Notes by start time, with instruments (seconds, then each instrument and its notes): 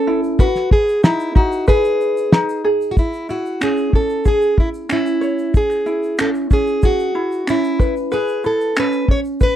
Already playing: ukulele C#4 B4, steel-string acoustic guitar A4
0.07 ukulele E4
0.24 shaker
0.39 steel-string acoustic guitar F#4, ukulele B4, kick, shaker
0.55 snare, shaker
0.71 steel-string acoustic guitar G#4, kick
0.88 shaker
1.03 ukulele D#4, steel-string acoustic guitar E4, snare, shaker
1.20 shaker
1.35 ukulele D#4, steel-string acoustic guitar F#4, kick
1.52 shaker
1.67 steel-string acoustic guitar G#4, ukulele B4, kick, shaker
1.84 shaker
2.01 shaker
2.17 shaker
2.32 ukulele D#4, snare, shaker
2.49 shaker
2.64 ukulele G#4
2.81 shaker
2.91 steel-string acoustic guitar F#4
2.97 steel-string acoustic guitar E4, kick, shaker
3.13 shaker
3.29 ukulele E4, steel-string acoustic guitar F#4, shaker
3.46 shaker
3.61 ukulele C#4, steel-string acoustic guitar G#4, finger snap, shaker
3.77 shaker
3.93 ukulele C#4, steel-string acoustic guitar A4, kick
4.09 shaker
4.25 ukulele G#4, steel-string acoustic guitar G#4, kick, shaker
4.42 shaker
4.57 ukulele E4, steel-string acoustic guitar E4, kick
4.74 shaker
4.89 ukulele C#4, steel-string acoustic guitar E4, finger snap, shaker
5.06 shaker
5.21 ukulele C#5, shaker
5.38 shaker
5.54 steel-string acoustic guitar G#4, kick, shaker
5.70 finger snap, shaker
5.86 ukulele E4, shaker
6.03 shaker
6.18 ukulele C#4, steel-string acoustic guitar A4, finger snap, shaker
6.34 shaker
6.51 ukulele C#4, steel-string acoustic guitar G#4, kick, shaker
6.67 shaker
6.82 steel-string acoustic guitar F#4, ukulele G#4, kick, shaker
6.99 shaker
7.15 ukulele E4
7.32 shaker
7.47 ukulele C#4, steel-string acoustic guitar E4, finger snap, shaker
7.64 shaker
7.79 ukulele B4, kick, shaker
7.96 shaker
8.12 steel-string acoustic guitar G#4, ukulele B4, shaker
8.28 shaker
8.44 ukulele E4, steel-string acoustic guitar A4, shaker
8.61 shaker
8.76 ukulele C#4, steel-string acoustic guitar B4, finger snap, shaker
8.92 shaker
9.08 ukulele C#4, steel-string acoustic guitar C#5, kick
9.25 shaker
9.40 ukulele B4, steel-string acoustic guitar B4, kick, shaker